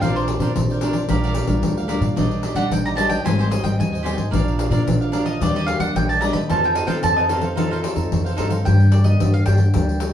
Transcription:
Already playing: F3 C4 D4
0.01 A#1 A#2 D4 A#4 C5 D5 F5, pandeiro
0.16 C5, pandeiro
0.28 D4 A#4 C5 D5, pandeiro
0.39 A#2 F3 C4 D4 A#4 C5 D5, pandeiro
0.55 A#1 F3, pandeiro
0.70 A#4 C5 D5, pandeiro
0.81 F3 C4 D4 A#4 C5 D5, pandeiro
0.93 A#4 C5 D5, pandeiro
1.08 A#1 A#2 G3 D4 F4 G4 A#4 D5 F5, pandeiro
1.24 G4 A#4 D5 F5, pandeiro
1.34 G4 A#4 D5 F5, pandeiro
1.47 A#1 G3 D4 F4, pandeiro
1.62 D2 A#2, pandeiro
1.77 A#4 D5 F5, pandeiro
1.88 G3 D4 F4 G4 A#4 D5 F5, pandeiro
2.00 A#2 A#4 D5 F5, pandeiro
2.16 A#1 A#2 G3 D4 D#4 G4 D5 D#5, pandeiro
2.31 pandeiro
2.42 D4 G4 D5 D#5, pandeiro
2.54 A#2 G3 D4 D#4 G4 D5 D#5 F#5, pandeiro
2.71 A#1 A#2 G5, pandeiro
2.85 G4 D5 D#5 A#5, pandeiro
2.95 G3 D4 D#4 G4 D5 D#5 A5, pandeiro
3.08 G4 D5 D#5 G5, pandeiro
3.24 G#1 G#2 G3 C4 D#4 G4 C5 D#5 G#5, pandeiro
3.39 G4 C5 D#5 G#5, pandeiro
3.50 C5 D#5 G#5, pandeiro
3.63 G#1 G3 C4 D#4 G5, pandeiro
3.79 D#2 D#3 G#5, pandeiro
3.92 C5 D#5 G#5, pandeiro
4.03 G3 C4 D#4 G4 C5 D#5 G#5, pandeiro
4.15 G#1 C5 D#5 G#5, pandeiro
4.31 A#1 A#2 F3 A#3 D4 A#4 D5 F5, pandeiro
4.48 pandeiro
4.58 D4 A#4 D5 F5, pandeiro
4.70 A#2 F3 A#3 D4 A#4 D5 F5, pandeiro
4.87 A#1 F3, pandeiro
5.01 A#4 D5 F5, pandeiro
5.12 F3 A#3 D4 A#4 D5 F5, pandeiro
5.25 A#4 D5 D#5 F5, pandeiro
5.40 D#2 D#3 G3 A#3 D4 G4 D5 D#5, pandeiro
5.55 D4 G4 D5 D#5, pandeiro
5.66 G4 D5 D#5 F5, pandeiro
5.79 D#2 G3 A#3 D4 F#5, pandeiro
5.95 A#1 A#2 G5, pandeiro
6.09 G4 D5 D#5 A5, pandeiro
6.21 G3 A#3 D4 G4 D5 D#5 A#5, pandeiro
6.33 D#3 G4 D5 D#5 B5, pandeiro
6.49 F2 F3 C4 D#4 A4 C5 F5 A5, pandeiro
6.64 G5, pandeiro
6.75 D#4 A4 C5 D#5 F5, pandeiro
6.87 F3 C4 D#4 A4 C5 F5 G5, pandeiro
7.03 F2 C3 A5, pandeiro
7.16 A4 C5 D#5 F5, pandeiro
7.29 C4 D#4 A4 C5 F5, pandeiro
7.41 A4 C5 F5, pandeiro
7.55 F3 C4 D#4 A4 C5 F5, pandeiro
7.71 D#4 A4 C5 F5, pandeiro
7.82 D#4 A4 C5 F5, pandeiro
7.96 F2 C4 D#4 A4, pandeiro
8.11 F2 C3, pandeiro
8.25 A4 C5 F5, pandeiro
8.37 G2 C4 D#4 A4 C5 F5, pandeiro
8.49 A4 C5 F5, pandeiro
8.65 G2 G3 A#3 D4 G4 G5, pandeiro
8.80 pandeiro
8.92 D5, pandeiro
9.04 A#3 D4 G4 D#5, pandeiro
9.20 G2 D3, pandeiro
9.34 F5, pandeiro
9.46 G2 A#3 D4 G4 G5, pandeiro
9.58 pandeiro
9.74 D2 G3 A#3 D4 G4, pandeiro
9.89 pandeiro
10.00 pandeiro

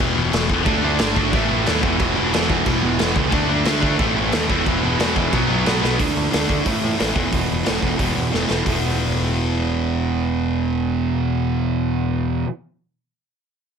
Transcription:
Already playing: E2 B2 E3
0.00 E1 E2 B2 E3
0.14 E1 E2 B2 E3
0.32 E1 E2 B2 E3, snare, crash
0.49 E1 E2 B2 E3, kick
0.66 D2 D3 A3 D4, kick, crash
0.82 D2 D3 A3 D4
0.99 G1 D3 A3 D4, snare, crash
1.16 D3 A3 D4, kick
1.32 A1 A2 E3 A3, kick, crash
1.48 A1 A2 E3 A3
1.65 D#2 A2 E3 A3, snare, crash
1.82 E1 E2 B2 E3, kick
1.98 E1 E2 B2 E3, kick, crash
2.15 E1 E2 B2 E3
2.32 E1 E2 B2 E3, snare, crash
2.48 E2 B2 E3, kick
2.65 E1 E2 B2 E3, kick, crash
2.82 E1 E2 B2 E3
2.98 E1 E2 B2 E3, snare, crash
3.15 C#2 E2 B2 E3, kick
3.31 D2 D3 A3 D4, kick, crash
3.48 D2 D3 A3 D4
3.64 D2 D3 A3 D4, snare, crash
3.81 D3 A3 D4, kick
3.99 A1 A2 E3 A3, kick, crash
4.16 A1 A2 E3 A3
4.32 D#2 A2 E3 A3, snare, crash
4.48 E1 E2 B2 E3, kick
4.66 E1 E2 B2 E3, kick, crash
4.82 E1 E2 B2 E3
4.98 E1 E2 B2 E3, snare, crash
5.16 E2 B2 E3, kick
5.32 B1 B2 F#3 B3, kick, crash
5.48 B1 B2 F#3 B3
5.65 B1 B2 F#3 B3, snare, crash
5.82 B1 B2 F#3 B3, snare
5.99 D2 D3 A3 D4, kick, open hi-hat
6.17 D2
6.31 D2 D3 A3 D4, snare, open hi-hat
6.48 D2 D3 A3 D4, kick
6.64 A1 A2 E3 A3, kick, open hi-hat
6.84 A2
6.98 A1 A2 E3 A3, snare, open hi-hat
7.14 E1 E2 B2 E3, kick
7.30 E1 E2 B2 E3, kick, open hi-hat
7.51 E1
7.65 E1 E2 B2 E3, snare, open hi-hat
7.81 E1 E2 B2 E3, kick
7.98 E1 E2 B2 E3, kick, open hi-hat
8.17 E2
8.32 E1 E2 B2 E3, snare
8.49 E1 E2 B2 E3, snare
8.64 E1 E2 B2 E3, kick, open hi-hat

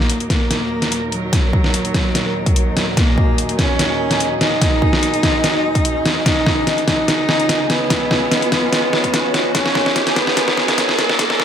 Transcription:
Already playing: D#2 A#2 F#3 A#3 D#4 F#4 A#4 D#5, riser
0.10 closed hi-hat
0.20 closed hi-hat
0.30 A#3, kick, snare, closed hi-hat
0.49 A#5, snare, closed hi-hat
0.82 snare, closed hi-hat
0.92 closed hi-hat
1.12 F#3, closed hi-hat
1.33 kick, snare, closed hi-hat
1.53 kick
1.64 snare
1.74 closed hi-hat
1.85 closed hi-hat
1.94 kick, snare, closed hi-hat
2.15 snare, closed hi-hat
2.46 kick, closed hi-hat
2.56 closed hi-hat
2.77 snare, closed hi-hat
2.97 A#3 G#4, kick, snare, closed hi-hat
3.18 kick
3.38 closed hi-hat
3.49 closed hi-hat
3.59 C#4, kick, snare, closed hi-hat
3.79 snare, closed hi-hat
4.11 snare, closed hi-hat
4.20 closed hi-hat
4.41 D#4, snare, closed hi-hat
4.61 kick, snare, closed hi-hat
4.82 kick
4.93 snare
5.03 closed hi-hat
5.14 closed hi-hat
5.23 kick, snare, closed hi-hat
5.44 snare, closed hi-hat
5.75 kick, closed hi-hat
5.85 closed hi-hat
6.06 snare, closed hi-hat
6.26 C#2 C#3 F3 D#4 F4 G#4, kick, snare, closed hi-hat
6.41 C#5
6.46 kick, snare
6.67 snare, closed hi-hat
6.73 G#5
6.78 closed hi-hat
6.88 D#4, kick, snare, closed hi-hat
7.08 snare, closed hi-hat
7.29 snare
7.40 closed hi-hat
7.49 snare, closed hi-hat
7.70 B3, snare, closed hi-hat
7.90 kick, snare, closed hi-hat
8.11 kick, snare
8.31 snare, closed hi-hat
8.42 closed hi-hat
8.52 kick, snare, closed hi-hat
8.73 snare, closed hi-hat
8.93 snare
9.04 kick, closed hi-hat
9.14 snare, closed hi-hat
9.34 snare, closed hi-hat
9.55 C#4 A#4, kick, snare, closed hi-hat
9.66 snare
9.75 kick, snare
9.86 snare
9.96 snare, closed hi-hat
10.07 snare, closed hi-hat
10.16 B3, kick, snare, closed hi-hat
10.27 snare
10.37 snare, closed hi-hat
10.48 snare
10.57 snare
10.68 snare, closed hi-hat
10.78 snare, closed hi-hat
10.89 snare
10.98 A#3, snare, closed hi-hat
11.10 snare
11.19 kick, snare, closed hi-hat
11.30 snare
11.40 kick, snare

